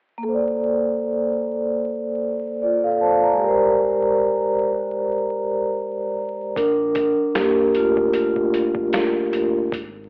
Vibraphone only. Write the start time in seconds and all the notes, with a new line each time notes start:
0.18 A#3
0.23 A4
0.29 C5
0.34 D5
2.62 F4 D5
2.84 A4 F5
3.01 C5 A5
3.23 D5 A#5
3.33 G#3
3.38 G4
3.43 A#4
3.48 C5
6.57 D4 A#4
7.36 A#3 G4
7.76 A3 F4
8.16 A3 F4